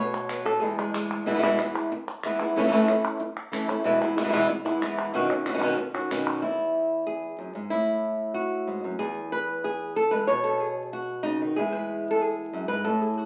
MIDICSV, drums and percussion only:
0, 0, Header, 1, 2, 480
1, 0, Start_track
1, 0, Key_signature, 4, "major"
1, 0, Tempo, 321888
1, 1886, Time_signature, 4, 2, 24, 8
1, 19766, End_track
2, 0, Start_track
2, 0, Title_t, "Drums"
2, 210, Note_on_c, 9, 39, 51
2, 359, Note_off_c, 9, 39, 0
2, 438, Note_on_c, 9, 39, 88
2, 587, Note_off_c, 9, 39, 0
2, 690, Note_on_c, 9, 39, 53
2, 839, Note_off_c, 9, 39, 0
2, 1408, Note_on_c, 9, 39, 97
2, 1557, Note_off_c, 9, 39, 0
2, 1654, Note_on_c, 9, 39, 43
2, 1803, Note_off_c, 9, 39, 0
2, 2368, Note_on_c, 9, 39, 79
2, 2517, Note_off_c, 9, 39, 0
2, 2616, Note_on_c, 9, 39, 54
2, 2765, Note_off_c, 9, 39, 0
2, 3332, Note_on_c, 9, 39, 86
2, 3481, Note_off_c, 9, 39, 0
2, 3571, Note_on_c, 9, 39, 47
2, 3721, Note_off_c, 9, 39, 0
2, 4300, Note_on_c, 9, 39, 79
2, 4449, Note_off_c, 9, 39, 0
2, 4542, Note_on_c, 9, 39, 55
2, 4691, Note_off_c, 9, 39, 0
2, 5269, Note_on_c, 9, 39, 87
2, 5418, Note_off_c, 9, 39, 0
2, 5505, Note_on_c, 9, 39, 48
2, 5654, Note_off_c, 9, 39, 0
2, 6234, Note_on_c, 9, 39, 76
2, 6383, Note_off_c, 9, 39, 0
2, 7190, Note_on_c, 9, 39, 92
2, 7339, Note_off_c, 9, 39, 0
2, 7435, Note_on_c, 9, 39, 50
2, 7584, Note_off_c, 9, 39, 0
2, 7903, Note_on_c, 9, 39, 49
2, 8052, Note_off_c, 9, 39, 0
2, 8142, Note_on_c, 9, 39, 85
2, 8291, Note_off_c, 9, 39, 0
2, 8373, Note_on_c, 9, 39, 47
2, 8522, Note_off_c, 9, 39, 0
2, 9115, Note_on_c, 9, 39, 89
2, 9264, Note_off_c, 9, 39, 0
2, 9348, Note_on_c, 9, 39, 49
2, 9497, Note_off_c, 9, 39, 0
2, 19766, End_track
0, 0, End_of_file